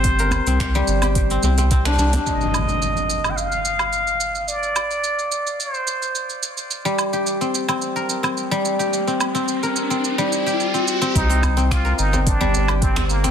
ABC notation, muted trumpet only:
X:1
M:4/4
L:1/16
Q:1/4=108
K:Cm
V:1 name="Muted trumpet"
c12 z4 | e6- e3/2 g/2 f8 | d8 c6 z2 | z16 |
z16 | E4 F2 E2 D4 C2 B,2 |]